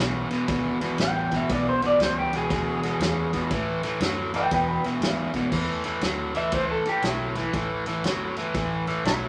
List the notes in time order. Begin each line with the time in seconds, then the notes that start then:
Already playing: B1
0.00 E2 C#3
0.30 E2 B2, snare, ride
0.48 G#1 E2 B2, kick, snare, ride
0.81 E2 B2, snare, ride
0.98 A1 E2 C#3 G5, snare, ride
1.31 E2 B2, kick, snare, ride
1.36 E5
1.49 B1 E2 B2 D5, kick, snare, ride
1.69 C5
1.82 E2 B2, snare, ride
1.86 D5
1.99 C#2 E2 C#3 C5, snare, ride
2.19 G4
2.33 E2 B2 G#4, snare, ride
2.50 D2 E2 B2, kick, snare, ride
2.83 E2 B2, snare, ride
3.00 E2 C#3, snare, ride
3.33 E2 B2, kick, snare, ride
3.50 A2 E3, kick, snare, ride
3.83 A2 E3, snare, ride
4.00 F#2 A2 F#3, snare, ride
4.34 A2 E3 E5 G5, snare, ride
4.51 E2 B2 B4 G5, kick, snare, ride
4.68 B4 G5
4.83 E2 B2 E5, muted fingered electric bass stroke, snare, ride
5.01 E2 G#2 C#3, snare, ride
5.34 E2 B2, kick, snare, ride
5.52 E2 A2 E3, kick, snare, crash
5.84 A2 E3, snare, ride
6.01 D2 A2 F#3, snare, ride
6.35 A2 E3 E5, snare, ride
6.52 C#2 A2 E3 C5, kick, snare, ride
6.71 A4
6.84 A2 E3, muted fingered electric bass stroke, snare, ride
6.89 G4
7.02 B1 A2 F#3 E4, snare, ride
7.35 A2 E3, kick, snare, ride
7.53 A1 A2 E3, kick, snare, ride
7.86 A2 E3, snare, ride
8.03 G1 A2 F#3, snare, ride
8.36 A2 E3, snare, ride
8.54 A1 A2 E3, kick, snare, ride
8.87 A2 E3, snare, ride
9.04 B1 A2 F#3 E4, snare, ride